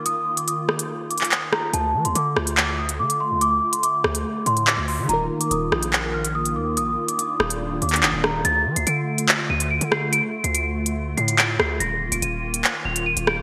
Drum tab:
HH |x--------x--x--------x--------x-x-x-------------|x--------x--x--------x-----------x-----x--------|x--------x--x--------x--------x--x--------o-----|x--------x--x--------x-----------x-----x--------|
CP |---------------------------------x--x-----------|------------------------x-----------------------|------------------------------------x-----------|------------------------x-----------------------|
SD |------------------r-----------------------r-----|------------------r-----------------------------|------------------r-----------------------------|------------------r-----------------------------|

HH |x--------x--x--------x--------x-x-x-------------|x--------x--x--------x-----------x-----x--------|x--------x--x--------x--------x--x--------------|x--------x--x--------x-----------x-----x--------|
CP |---------------------------------x--x-----------|------------------------x-----------------------|------------------------------------x-----------|------------------------x-----------------------|
SD |------------------r-----------------------r-----|------------------------------------------r-----|------------------------------------------r-----|------------------------------------------r-----|